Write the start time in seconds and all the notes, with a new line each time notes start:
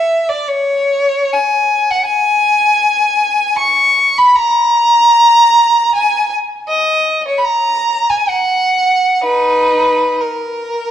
Already playing: E5
0.29 D5
0.48 C#5
1.33 G#5
1.90 F#5
2.05 G#5
3.58 C#6
4.17 B5
4.36 A#5
5.95 G#5
6.68 D#5
7.28 C#5
7.38 B5
7.44 A#5
8.10 G#5
8.29 F#5
9.24 D#4 B4
10.21 A#4